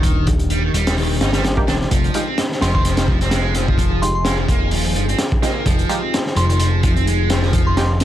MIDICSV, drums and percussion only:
0, 0, Header, 1, 2, 480
1, 0, Start_track
1, 0, Tempo, 468750
1, 38, Time_signature, 4, 2, 24, 8
1, 8234, End_track
2, 0, Start_track
2, 0, Title_t, "Drums"
2, 33, Note_on_c, 9, 36, 118
2, 34, Note_on_c, 9, 42, 89
2, 135, Note_off_c, 9, 36, 0
2, 137, Note_off_c, 9, 42, 0
2, 274, Note_on_c, 9, 42, 77
2, 282, Note_on_c, 9, 36, 103
2, 377, Note_off_c, 9, 42, 0
2, 384, Note_off_c, 9, 36, 0
2, 403, Note_on_c, 9, 42, 41
2, 506, Note_off_c, 9, 42, 0
2, 513, Note_on_c, 9, 42, 58
2, 615, Note_off_c, 9, 42, 0
2, 761, Note_on_c, 9, 42, 85
2, 863, Note_off_c, 9, 42, 0
2, 890, Note_on_c, 9, 42, 85
2, 894, Note_on_c, 9, 38, 111
2, 993, Note_off_c, 9, 42, 0
2, 996, Note_off_c, 9, 38, 0
2, 1001, Note_on_c, 9, 46, 79
2, 1104, Note_off_c, 9, 46, 0
2, 1239, Note_on_c, 9, 42, 80
2, 1240, Note_on_c, 9, 38, 111
2, 1341, Note_off_c, 9, 42, 0
2, 1342, Note_off_c, 9, 38, 0
2, 1363, Note_on_c, 9, 38, 100
2, 1368, Note_on_c, 9, 42, 76
2, 1466, Note_off_c, 9, 38, 0
2, 1470, Note_off_c, 9, 42, 0
2, 1479, Note_on_c, 9, 42, 73
2, 1481, Note_on_c, 9, 38, 104
2, 1582, Note_off_c, 9, 42, 0
2, 1584, Note_off_c, 9, 38, 0
2, 1609, Note_on_c, 9, 36, 95
2, 1712, Note_off_c, 9, 36, 0
2, 1721, Note_on_c, 9, 38, 97
2, 1721, Note_on_c, 9, 42, 72
2, 1823, Note_off_c, 9, 42, 0
2, 1824, Note_off_c, 9, 38, 0
2, 1854, Note_on_c, 9, 38, 42
2, 1956, Note_off_c, 9, 38, 0
2, 1958, Note_on_c, 9, 42, 89
2, 1961, Note_on_c, 9, 36, 114
2, 2060, Note_off_c, 9, 42, 0
2, 2063, Note_off_c, 9, 36, 0
2, 2091, Note_on_c, 9, 42, 45
2, 2193, Note_off_c, 9, 42, 0
2, 2193, Note_on_c, 9, 42, 73
2, 2295, Note_off_c, 9, 42, 0
2, 2435, Note_on_c, 9, 42, 80
2, 2436, Note_on_c, 9, 38, 114
2, 2537, Note_off_c, 9, 42, 0
2, 2538, Note_off_c, 9, 38, 0
2, 2579, Note_on_c, 9, 38, 46
2, 2677, Note_off_c, 9, 38, 0
2, 2677, Note_on_c, 9, 38, 106
2, 2684, Note_on_c, 9, 42, 76
2, 2779, Note_off_c, 9, 38, 0
2, 2786, Note_off_c, 9, 42, 0
2, 2814, Note_on_c, 9, 36, 80
2, 2916, Note_off_c, 9, 36, 0
2, 2917, Note_on_c, 9, 42, 70
2, 2920, Note_on_c, 9, 38, 39
2, 3019, Note_off_c, 9, 42, 0
2, 3022, Note_off_c, 9, 38, 0
2, 3042, Note_on_c, 9, 42, 80
2, 3047, Note_on_c, 9, 38, 105
2, 3144, Note_off_c, 9, 42, 0
2, 3149, Note_off_c, 9, 38, 0
2, 3154, Note_on_c, 9, 36, 81
2, 3257, Note_off_c, 9, 36, 0
2, 3287, Note_on_c, 9, 42, 53
2, 3288, Note_on_c, 9, 38, 36
2, 3389, Note_off_c, 9, 42, 0
2, 3390, Note_off_c, 9, 38, 0
2, 3392, Note_on_c, 9, 38, 107
2, 3393, Note_on_c, 9, 42, 86
2, 3495, Note_off_c, 9, 38, 0
2, 3495, Note_off_c, 9, 42, 0
2, 3631, Note_on_c, 9, 42, 66
2, 3634, Note_on_c, 9, 38, 32
2, 3734, Note_off_c, 9, 42, 0
2, 3737, Note_off_c, 9, 38, 0
2, 3773, Note_on_c, 9, 36, 94
2, 3868, Note_off_c, 9, 36, 0
2, 3868, Note_on_c, 9, 36, 97
2, 3878, Note_on_c, 9, 42, 79
2, 3971, Note_off_c, 9, 36, 0
2, 3981, Note_off_c, 9, 42, 0
2, 4122, Note_on_c, 9, 42, 65
2, 4225, Note_off_c, 9, 42, 0
2, 4349, Note_on_c, 9, 38, 120
2, 4354, Note_on_c, 9, 42, 80
2, 4451, Note_off_c, 9, 38, 0
2, 4456, Note_off_c, 9, 42, 0
2, 4592, Note_on_c, 9, 36, 93
2, 4597, Note_on_c, 9, 42, 62
2, 4695, Note_off_c, 9, 36, 0
2, 4699, Note_off_c, 9, 42, 0
2, 4825, Note_on_c, 9, 46, 81
2, 4928, Note_off_c, 9, 46, 0
2, 5079, Note_on_c, 9, 42, 75
2, 5182, Note_off_c, 9, 42, 0
2, 5212, Note_on_c, 9, 42, 39
2, 5310, Note_off_c, 9, 42, 0
2, 5310, Note_on_c, 9, 38, 106
2, 5310, Note_on_c, 9, 42, 90
2, 5413, Note_off_c, 9, 38, 0
2, 5413, Note_off_c, 9, 42, 0
2, 5448, Note_on_c, 9, 36, 108
2, 5550, Note_off_c, 9, 36, 0
2, 5560, Note_on_c, 9, 38, 43
2, 5560, Note_on_c, 9, 42, 66
2, 5662, Note_off_c, 9, 38, 0
2, 5662, Note_off_c, 9, 42, 0
2, 5794, Note_on_c, 9, 36, 115
2, 5795, Note_on_c, 9, 42, 88
2, 5896, Note_off_c, 9, 36, 0
2, 5898, Note_off_c, 9, 42, 0
2, 5928, Note_on_c, 9, 42, 44
2, 6030, Note_off_c, 9, 42, 0
2, 6036, Note_on_c, 9, 42, 74
2, 6138, Note_off_c, 9, 42, 0
2, 6286, Note_on_c, 9, 42, 84
2, 6289, Note_on_c, 9, 38, 105
2, 6388, Note_off_c, 9, 42, 0
2, 6392, Note_off_c, 9, 38, 0
2, 6419, Note_on_c, 9, 38, 43
2, 6518, Note_on_c, 9, 42, 75
2, 6522, Note_off_c, 9, 38, 0
2, 6620, Note_off_c, 9, 42, 0
2, 6654, Note_on_c, 9, 42, 47
2, 6754, Note_off_c, 9, 42, 0
2, 6754, Note_on_c, 9, 42, 83
2, 6857, Note_off_c, 9, 42, 0
2, 6997, Note_on_c, 9, 42, 72
2, 7001, Note_on_c, 9, 36, 93
2, 7099, Note_off_c, 9, 42, 0
2, 7103, Note_off_c, 9, 36, 0
2, 7132, Note_on_c, 9, 42, 39
2, 7235, Note_off_c, 9, 42, 0
2, 7244, Note_on_c, 9, 42, 54
2, 7346, Note_off_c, 9, 42, 0
2, 7473, Note_on_c, 9, 42, 75
2, 7479, Note_on_c, 9, 38, 94
2, 7575, Note_off_c, 9, 42, 0
2, 7582, Note_off_c, 9, 38, 0
2, 7602, Note_on_c, 9, 38, 40
2, 7704, Note_off_c, 9, 38, 0
2, 7712, Note_on_c, 9, 42, 84
2, 7713, Note_on_c, 9, 36, 111
2, 7814, Note_off_c, 9, 42, 0
2, 7816, Note_off_c, 9, 36, 0
2, 7957, Note_on_c, 9, 38, 113
2, 7958, Note_on_c, 9, 42, 77
2, 8060, Note_off_c, 9, 38, 0
2, 8060, Note_off_c, 9, 42, 0
2, 8194, Note_on_c, 9, 42, 91
2, 8203, Note_on_c, 9, 38, 101
2, 8234, Note_off_c, 9, 38, 0
2, 8234, Note_off_c, 9, 42, 0
2, 8234, End_track
0, 0, End_of_file